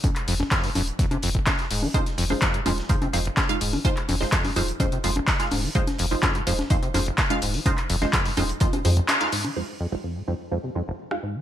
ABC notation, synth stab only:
X:1
M:4/4
L:1/16
Q:1/4=126
K:Fm
V:1 name="Synth stab"
z16 | [A,EFc] z2 [A,EFc] z2 [A,EFc] z [A,EFc] z [A,EFc] z2 [A,EFf] z2 | [A,EFc] z2 [A,EFc] z2 [A,EFc] z [A,EFc] z [A,EFc] z2 [A,EFf] z2 | [A,EFc] z2 [A,EFc] z2 [A,EFc] z [A,EFc] z [A,EFc] z2 [A,EFf] z2 |
[A,EFc] z2 [A,EFc] z2 [A,EFc] z [A,EFc] z [A,EFc] z2 [A,EFf] z2 | [A,EFc] z2 [A,EFc] z2 [A,EFc] z [A,EFc] z [A,EFc] z2 [A,EFf] z2 |]